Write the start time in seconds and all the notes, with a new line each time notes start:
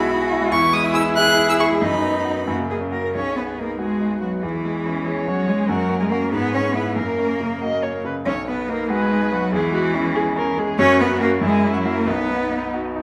Already playing: B1 B2 G#3 E4 F#4 G#4 E5 B5
0.00 G#5
0.11 E5
0.21 G#4
0.32 E4
0.41 G#3
0.51 E2 E4 C#6
0.63 E3
0.73 G#3 D#6
0.83 E4
0.94 G#4 E6
1.05 E4
1.16 G#4 E5 F#6
1.27 G#5
1.37 E5
1.48 G#4 E6
1.60 E4 C#6
1.70 G#3
1.81 F#2 D#4 B5
1.92 F#3
2.02 B3
2.14 D#4
2.25 F#4
2.36 B4
2.46 F#2 A#3 F#4
2.58 C#3
2.70 A#3 G#4
2.81 C#4
2.91 F#4 A#4
3.03 A#4
3.14 B1 C#4 G#4 C#5
3.36 B3 B4
3.58 A#3 D#4 A#4
3.78 G#3 F#4 G#4
4.01 D#4
4.21 F#3 B3 F#4
4.42 E2 E3 E4 G#4
4.65 G#3
4.86 C#4
5.05 G#4 C#5
5.27 F#3 C#4 F#4
5.48 G#3 G#4
5.69 F#2 F#3 F#4 A#4
5.90 A#3
6.00 G#3 G#4
6.10 A#3 C#4 F#4 A#4
6.31 G#2 B3 G#4 B4
6.53 B3 C#4 C#5
6.73 B3 E4 B4
6.95 F#2 A#3 A#4
7.18 C#4
7.40 C#3
7.61 F#4 D#5
7.83 C#4 C#5
8.05 C#3 B4
8.25 B1 C#4 C#5
8.48 B3 B4
8.69 A#3 D#4 A#4
8.90 G#3 F#4 G#4 B4
9.11 D#4
9.32 F#3 B3 F#4
9.53 E2 E4 G#4
9.57 E3
9.72 G#3 F#4
9.94 C#4 E4
10.15 G#4
10.36 C#4 A#4
10.57 G#3 G#4
10.78 F#2 C#4 F#4 C#5
11.00 A#3 B3 B4
11.20 A#3 C#4 F#4 A#4
11.41 F#2 G#3 E4 G#4
11.64 C#4
11.73 F#3 F#4
11.85 A#3 E4 F#4 A#4
12.06 B1 B3 D#4 B4
12.29 B3
12.51 D#4
12.74 F#4
12.96 D#4